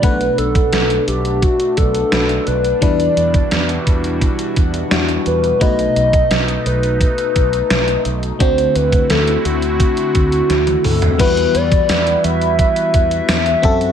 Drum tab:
CC |----------------|----------------|----------------|----------------|
HH |xxxxxxxxxxxxxxxx|xxxxxxxxxxxxxxxx|xxxxxxxxxxxxxxxx|xxxxxxxxxxxxxxox|
TB |----------------|----------------|----------------|----------------|
SD |----o-------o---|----o-------o---|----o-------o---|----o-------o---|
T1 |----------------|----------------|----------------|-------------o--|
T2 |----------------|----------------|----------------|--------------o-|
FT |----------------|----------------|----------------|---------------o|
BD |o--o----o-o-----|o--o--o-o-o-----|o--o----o-o-----|o--o----o-o-----|

CC |x---------------|
HH |xxxxxxxxxxxxxxxx|
TB |----x-------x---|
SD |----o-------o---|
T1 |----------------|
T2 |----------------|
FT |----------------|
BD |o--o----o-o---o-|